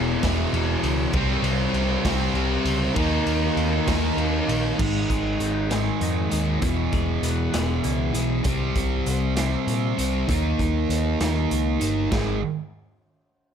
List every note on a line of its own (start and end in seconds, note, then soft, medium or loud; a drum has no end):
0.00 0.14 E1 loud
0.00 0.51 E2 medium
0.00 0.52 B2 medium
0.00 0.53 E3 medium
0.22 0.44 E1 medium
0.22 1.14 E2 medium
0.22 1.13 B2 medium
0.22 1.13 E3 medium
0.22 kick medium
0.22 snare loud
0.22 ride medium
0.52 0.74 E1 loud
0.52 1.12 E2 medium
0.52 1.12 B2 medium
0.52 1.13 E3 medium
0.52 ride medium
0.83 1.04 C#2 medium
0.83 ride medium
1.13 1.35 C2 medium
1.13 2.33 C3 medium
1.13 2.34 G3 medium
1.13 2.35 C4 loud
1.13 kick loud
1.13 ride loud
1.43 1.64 C2 loud
1.43 ride medium
1.74 1.95 C2 medium
1.74 ride medium
2.05 2.26 C2 loud
2.05 2.97 C3 medium
2.05 2.96 G3 medium
2.05 2.96 C4 loud
2.05 kick medium
2.05 snare loud
2.05 ride loud
2.34 2.55 C2 medium
2.34 2.94 C3 medium
2.34 2.95 G3 medium
2.34 2.96 C4 medium
2.34 ride medium
2.65 2.86 C#2 medium
2.65 ride medium
2.95 3.17 D#2 medium
2.95 4.16 D#3 medium
2.95 4.16 A#3 medium
2.95 4.17 D#4 medium
2.95 kick loud
2.95 ride loud
3.26 3.48 D#2 medium
3.26 ride medium
3.57 3.78 D#2 medium
3.57 ride medium
3.87 4.08 D#2 medium
3.87 4.79 D#3 medium
3.87 4.78 A#3 medium
3.87 4.77 D#4 medium
3.87 kick medium
3.87 snare loud
3.87 ride loud
4.17 4.38 D#2 medium
4.17 4.77 D#3 medium
4.17 4.77 A#3 medium
4.17 4.78 D#4 medium
4.17 ride medium
4.48 4.69 A#1 medium
4.48 ride medium
4.78 5.03 G#1 medium
4.78 6.29 G#2 medium
4.78 6.32 G#2 medium
4.78 6.30 D#3 medium
4.78 6.29 G#3 loud
4.78 kick loud
4.78 crash loud
5.10 5.33 G#1 medium
5.10 5.69 G#3 medium
5.10 kick medium
5.10 closed hi-hat medium
5.40 5.87 G#1 medium
5.40 6.63 C4 medium
5.40 closed hi-hat medium
5.71 6.61 G#2 medium
5.71 6.62 D#3 medium
5.71 6.31 G#3 medium
5.71 6.60 G#3 medium
5.71 snare loud
5.71 closed hi-hat medium
6.01 6.25 F2 medium
6.01 6.63 D#4 medium
6.01 closed hi-hat medium
6.30 6.56 D#2 medium
6.30 6.60 G#2 medium
6.30 6.60 D#3 medium
6.30 6.60 G#3 medium
6.30 6.62 G#3 medium
6.30 closed hi-hat medium
6.60 6.86 E1 medium
6.60 8.12 E2 medium
6.60 8.13 B2 medium
6.60 8.15 E3 medium
6.60 8.12 E3 medium
6.60 kick loud
6.60 closed hi-hat medium
6.92 7.16 E1 medium
6.92 7.53 G#3 medium
6.92 kick medium
6.92 closed hi-hat medium
7.23 7.46 E1 medium
7.23 8.46 B3 medium
7.23 closed hi-hat medium
7.52 7.78 E1 medium
7.52 8.45 E2 medium
7.52 8.42 B2 medium
7.52 8.43 E3 medium
7.52 8.15 G#3 medium
7.52 snare loud
7.52 closed hi-hat medium
7.84 8.08 C#2 medium
7.84 8.46 E4 medium
7.84 closed hi-hat medium
8.13 8.38 B1 medium
8.13 8.44 E2 medium
8.13 8.44 B2 medium
8.13 8.43 E3 medium
8.13 8.46 G#3 medium
8.13 closed hi-hat medium
8.44 8.69 C2 loud
8.44 9.96 C3 medium
8.44 9.97 G3 medium
8.44 9.96 C4 loud
8.44 kick loud
8.44 closed hi-hat medium
8.76 8.99 C2 medium
8.76 kick medium
8.76 closed hi-hat medium
9.06 9.54 C2 medium
9.06 closed hi-hat medium
9.36 10.28 G3 medium
9.36 10.26 C4 medium
9.36 snare loud
9.36 closed hi-hat loud
9.40 10.27 C3 medium
9.67 9.91 A#2 medium
9.67 closed hi-hat medium
9.97 10.22 C2 medium
9.97 10.27 C3 medium
9.97 10.27 G3 medium
9.97 10.27 C4 medium
9.97 closed hi-hat medium
10.28 10.52 D#2 medium
10.28 11.80 D#3 medium
10.28 11.80 A#3 loud
10.28 11.79 D#4 medium
10.28 kick loud
10.28 closed hi-hat medium
10.59 10.83 D#2 medium
10.59 kick medium
10.59 closed hi-hat medium
10.89 11.13 D#2 medium
10.89 closed hi-hat medium
11.20 11.44 D#2 medium
11.20 12.11 D#3 medium
11.20 12.11 A#3 medium
11.20 12.11 D#4 medium
11.20 snare loud
11.20 closed hi-hat medium
11.51 11.75 C#2 medium
11.51 closed hi-hat medium
11.80 12.05 G1 medium
11.80 12.10 D#3 medium
11.80 12.10 A#3 medium
11.80 12.10 D#4 medium
11.80 closed hi-hat medium
12.10 12.40 G#1 medium
12.10 12.36 G#2 medium
12.10 12.36 D#3 medium
12.10 12.37 G#3 loud
12.10 kick loud
12.10 snare loud
12.10 splash medium